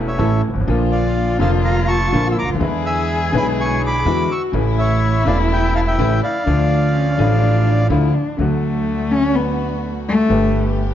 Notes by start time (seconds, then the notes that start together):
Already playing: E1 E2 E3 A3 C#4 E4 A4
0.08 C#5 E5
0.18 A1 A2 E3 A3 C#4 E4 A4
0.48 G1
0.54 G#1
0.60 A1
0.66 A#1 A#2 D3 F3 A#3 D4 F4
0.92 D5 F5
1.38 F1 F2 D3 F3 A#3 D4 F4 F5 A5
1.65 F5 A#5
1.88 A5 C#6
2.12 A#1 A#2 D3 F3 A#3 D4 F4
2.32 E6
2.39 C#2 A#5 D6
2.43 C#2
2.48 D2
2.54 D#2 D3
2.60 E2 E3 G#3 B3 D4 E4 G#4
2.86 E5 G#5
3.32 B1 B2 D3 G#3 B3 D4 E4
3.37 G#5 B5
3.60 G#5 C#6
3.86 B5 D6
3.98 G#4
4.05 E2 D3 E3 G#3 B3 D4 E4 F#4
4.32 C#6 E6
4.52 A1 A2 C#3 E3 A3 C#4 E4
4.56 E4
4.79 C#5 E5
5.24 E1 E2 C#3 E3 A3 C#4 E4 D5 F5
5.53 E5 G5
5.75 F5 A5
5.87 E5 G5
5.98 A1 A2 C#3 E3 A3 C#4 E4
6.23 D5 F5
6.46 D2 D3 F3 A3 D4 F4
6.94 C#4
7.17 A1 A2 D3 F3 A3 D4 F4
7.21 F4
7.89 D2 D3 F3 A3 D4 E4 F4
8.14 D4
8.37 D2 D3 F#3 A3 D4 F#4
8.41 A3 F#4
9.11 C#4
9.35 B3
10.09 A3
10.28 G1 G2 D3 A3 B3 G4